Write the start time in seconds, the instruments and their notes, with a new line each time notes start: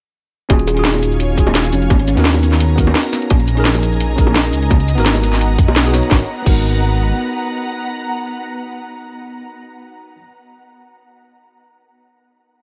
0.49 detuned saw bass D#1, tine electric piano C#4 F4 F#4 G#4, ambient pad C#5 F5 G#5, kick, closed hi-hat, high bongo
0.59 closed hi-hat
0.67 kalimba G#4, closed hi-hat, shaker
0.74 tine electric piano C#4 F4 F#4, closed hi-hat
0.79 tine electric piano G#4
0.85 kalimba D#4, snare, closed hi-hat
0.94 closed hi-hat, high bongo, shaker
1.03 closed hi-hat, shaker
1.12 shaker
1.20 closed hi-hat
1.35 tine electric piano C#4 F4 F#4, kick, closed hi-hat, shaker
1.40 tine electric piano G#4
1.47 high bongo
1.55 snare, closed hi-hat
1.64 snare
1.73 detuned saw bass F1, kalimba C#4, closed hi-hat, shaker
1.82 closed hi-hat
1.90 detuned saw bass G#1, ambient pad B3 A#5, kick, closed hi-hat, high bongo
2.00 closed hi-hat
2.08 kalimba C#4, closed hi-hat, shaker
2.15 detuned saw bass D#2, tine electric piano B3 D#4 F#4, snare, closed hi-hat
2.20 tine electric piano A#4
2.25 kalimba C#4, snare, closed hi-hat
2.34 closed hi-hat, high bongo, shaker
2.43 closed hi-hat, shaker
2.52 snare, shaker
2.60 closed hi-hat
2.76 tine electric piano B3 D#4 F#4, kick, closed hi-hat, shaker
2.80 tine electric piano A#4
2.87 high bongo
2.95 snare, closed hi-hat
3.13 snare, closed hi-hat, shaker
3.22 closed hi-hat
3.30 detuned saw bass A#1, ambient pad D#5 G#5 A#5, kick, closed hi-hat, high bongo
3.40 closed hi-hat
3.48 closed hi-hat, shaker
3.55 tine electric piano C#4 D#4 G#4, closed hi-hat
3.60 tine electric piano A#4
3.65 snare, closed hi-hat
3.75 closed hi-hat, high bongo, shaker
3.83 closed hi-hat, shaker
3.92 shaker
4.00 closed hi-hat
4.16 tine electric piano C#4 D#4 G#4, kick, closed hi-hat, shaker
4.21 tine electric piano A#4
4.27 high bongo
4.36 snare, closed hi-hat
4.45 snare
4.53 detuned saw bass C#2, closed hi-hat, shaker
4.63 closed hi-hat
4.70 detuned saw bass C#2, ambient pad B3 F#5, kick, closed hi-hat, high bongo
4.80 closed hi-hat
4.88 closed hi-hat, shaker
4.95 detuned saw bass G#1, tine electric piano B3 D#4 F#4, snare, closed hi-hat
5.00 tine electric piano A#4
5.06 snare, closed hi-hat
5.15 closed hi-hat, high bongo, shaker
5.23 closed hi-hat, shaker
5.33 snare, shaker
5.41 closed hi-hat
5.58 detuned saw bass F#2, kick, closed hi-hat, shaker
5.68 detuned saw bass B1, high bongo
5.76 snare, closed hi-hat
5.84 tine electric piano B3 D#4 F#4 G#4
5.92 tine electric piano B3 D#4 F#4 C#5, snare, closed hi-hat, shaker
6.03 closed hi-hat
6.07 detuned saw bass G#1, tine electric piano B3 D#4, kick, snare
6.11 ambient pad B3 F#5 A#5, tine electric piano F#4 A#4
6.42 tine electric piano B3 D#4, kick, crash
6.46 detuned saw bass G#1, tine electric piano F#4 A#4